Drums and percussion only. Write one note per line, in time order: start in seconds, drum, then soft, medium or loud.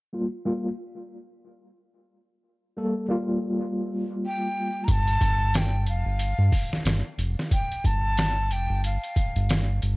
4.88 kick loud
4.88 closed hi-hat medium
5.08 closed hi-hat soft
5.21 kick medium
5.21 closed hi-hat medium
5.54 snare loud
5.54 closed hi-hat medium
5.87 closed hi-hat medium
6.19 closed hi-hat medium
6.53 kick medium
6.53 open hi-hat medium
6.73 snare soft
6.86 snare loud
6.86 closed hi-hat medium
7.19 closed hi-hat medium
7.39 snare soft
7.51 kick loud
7.51 closed hi-hat medium
7.72 closed hi-hat soft
7.85 kick medium
7.85 closed hi-hat medium
8.18 snare loud
8.18 closed hi-hat medium
8.51 closed hi-hat medium
8.84 closed hi-hat medium
9.03 closed hi-hat soft
9.16 kick medium
9.16 closed hi-hat medium
9.36 closed hi-hat soft
9.49 snare loud
9.49 closed hi-hat medium
9.82 closed hi-hat medium